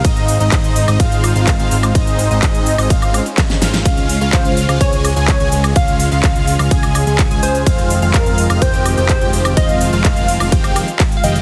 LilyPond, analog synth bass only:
\new Staff \with { instrumentName = "Analog synth bass" } { \clef bass \time 4/4 \key f \minor \tempo 4 = 126 aes,,8. aes,,16 aes,,8. aes,,16 aes,,8. aes,,8 aes,,16 aes,,8 | aes,,8. aes,,16 aes,,8. aes,,16 aes,,8. r8. aes,,8 | des,8. des,16 des,8. des,16 des,8. des,8 des,16 des,8 | des,8. des,16 des,8. des,16 des,8. des,8 des,16 des,8 |
f,,8. f,,16 f,,8. f,,16 f,,8. f,,8 f,,16 f,,8 | f,,8. f,,16 f,,8. f,,16 f,,8. r8. f,,8 | }